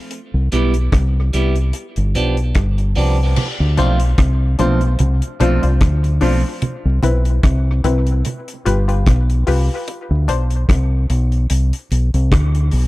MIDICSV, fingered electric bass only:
0, 0, Header, 1, 2, 480
1, 0, Start_track
1, 0, Tempo, 813008
1, 64, Time_signature, 4, 2, 24, 8
1, 7601, End_track
2, 0, Start_track
2, 0, Title_t, "Fingered electric bass"
2, 0, Program_c, 0, 33
2, 200, Note_on_c, 0, 36, 95
2, 298, Note_off_c, 0, 36, 0
2, 310, Note_on_c, 0, 35, 76
2, 529, Note_off_c, 0, 35, 0
2, 548, Note_on_c, 0, 36, 102
2, 768, Note_off_c, 0, 36, 0
2, 790, Note_on_c, 0, 36, 76
2, 1009, Note_off_c, 0, 36, 0
2, 1164, Note_on_c, 0, 31, 94
2, 1261, Note_off_c, 0, 31, 0
2, 1270, Note_on_c, 0, 35, 80
2, 1490, Note_off_c, 0, 35, 0
2, 1510, Note_on_c, 0, 31, 81
2, 1730, Note_off_c, 0, 31, 0
2, 1752, Note_on_c, 0, 36, 87
2, 1972, Note_off_c, 0, 36, 0
2, 2126, Note_on_c, 0, 38, 110
2, 2223, Note_off_c, 0, 38, 0
2, 2236, Note_on_c, 0, 35, 86
2, 2454, Note_off_c, 0, 35, 0
2, 2470, Note_on_c, 0, 36, 96
2, 2691, Note_off_c, 0, 36, 0
2, 2713, Note_on_c, 0, 35, 103
2, 2933, Note_off_c, 0, 35, 0
2, 2951, Note_on_c, 0, 36, 93
2, 3072, Note_off_c, 0, 36, 0
2, 3193, Note_on_c, 0, 35, 90
2, 3313, Note_off_c, 0, 35, 0
2, 3327, Note_on_c, 0, 36, 93
2, 3424, Note_off_c, 0, 36, 0
2, 3431, Note_on_c, 0, 38, 90
2, 3652, Note_off_c, 0, 38, 0
2, 3671, Note_on_c, 0, 35, 99
2, 3793, Note_off_c, 0, 35, 0
2, 4046, Note_on_c, 0, 36, 107
2, 4144, Note_off_c, 0, 36, 0
2, 4154, Note_on_c, 0, 35, 89
2, 4373, Note_off_c, 0, 35, 0
2, 4391, Note_on_c, 0, 36, 102
2, 4612, Note_off_c, 0, 36, 0
2, 4630, Note_on_c, 0, 36, 105
2, 4851, Note_off_c, 0, 36, 0
2, 5113, Note_on_c, 0, 31, 93
2, 5333, Note_off_c, 0, 31, 0
2, 5354, Note_on_c, 0, 35, 105
2, 5573, Note_off_c, 0, 35, 0
2, 5595, Note_on_c, 0, 36, 88
2, 5715, Note_off_c, 0, 36, 0
2, 5966, Note_on_c, 0, 38, 105
2, 6064, Note_off_c, 0, 38, 0
2, 6072, Note_on_c, 0, 35, 76
2, 6292, Note_off_c, 0, 35, 0
2, 6311, Note_on_c, 0, 36, 94
2, 6531, Note_off_c, 0, 36, 0
2, 6552, Note_on_c, 0, 35, 100
2, 6772, Note_off_c, 0, 35, 0
2, 6791, Note_on_c, 0, 36, 87
2, 6912, Note_off_c, 0, 36, 0
2, 7033, Note_on_c, 0, 35, 93
2, 7153, Note_off_c, 0, 35, 0
2, 7167, Note_on_c, 0, 36, 95
2, 7263, Note_off_c, 0, 36, 0
2, 7275, Note_on_c, 0, 38, 100
2, 7493, Note_off_c, 0, 38, 0
2, 7515, Note_on_c, 0, 35, 93
2, 7601, Note_off_c, 0, 35, 0
2, 7601, End_track
0, 0, End_of_file